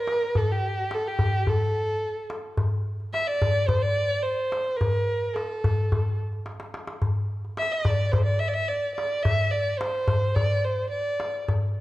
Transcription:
Already playing: A#4
0.07 darbuka tek
0.35 A4, darbuka dum
0.51 G4
0.78 darbuka ka
0.91 A4, darbuka tek
1.05 G4, darbuka ka
1.19 darbuka dum
1.47 A4, darbuka dum
1.75 darbuka ka
1.88 darbuka ka
2.30 darbuka tek
2.57 darbuka dum
3.00 darbuka ka
3.14 E5, darbuka tek
3.27 D5, darbuka ka
3.42 darbuka dum
3.67 C5, darbuka dum
3.82 D5
3.97 darbuka ka
4.11 darbuka ka
4.23 C5
4.52 darbuka tek
4.77 A#4
4.81 darbuka dum
5.23 darbuka ka
5.33 A4, darbuka tek
5.51 darbuka ka
5.64 darbuka dum
5.92 darbuka dum
6.06 darbuka ka
6.32 darbuka ka
6.46 darbuka tek
6.60 darbuka ka
6.74 darbuka tek
6.87 darbuka ka
7.02 darbuka dum
7.45 darbuka ka
7.57 E5, darbuka tek
7.71 D5, darbuka ka
7.85 darbuka dum
8.12 C5, darbuka dum
8.25 D5
8.39 E5, darbuka ka
8.48 D5
8.54 E5, darbuka ka
8.68 D5
8.95 D5, darbuka tek
9.22 E5, darbuka dum
9.51 D5
9.68 darbuka ka
9.79 C5, darbuka tek
9.95 darbuka ka
10.08 darbuka dum
10.36 D5, darbuka dum
10.64 C5, darbuka ka
10.78 darbuka ka
10.91 D5
11.20 darbuka tek
11.48 darbuka dum

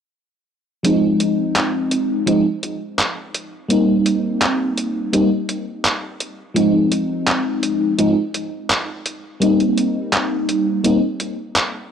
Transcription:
0.83 F3 G#3 C4 D#4, closed hi-hat
1.20 closed hi-hat
1.56 clap, closed hi-hat
1.91 closed hi-hat
2.26 F3 G#3 C4 D#4, closed hi-hat
2.63 closed hi-hat
2.99 clap, closed hi-hat
3.35 closed hi-hat
3.68 G3 A#3 C4 D#4, closed hi-hat
4.06 closed hi-hat
4.42 clap, closed hi-hat
4.77 closed hi-hat
5.13 G3 A#3 C4 D#4, closed hi-hat
5.49 closed hi-hat
5.85 clap, closed hi-hat
6.20 closed hi-hat
6.54 F3 G#3 C4 D#4, closed hi-hat
6.92 closed hi-hat
7.27 clap, closed hi-hat
7.63 closed hi-hat
7.98 F3 G#3 C4 D#4, closed hi-hat
8.34 closed hi-hat
8.70 clap, closed hi-hat
9.06 closed hi-hat
9.40 G3 A#3 C4 D#4, closed hi-hat
9.60 closed hi-hat
9.78 closed hi-hat
10.13 clap, closed hi-hat
10.49 closed hi-hat
10.84 G3 A#3 C4 D#4, closed hi-hat
11.20 closed hi-hat
11.56 clap, closed hi-hat

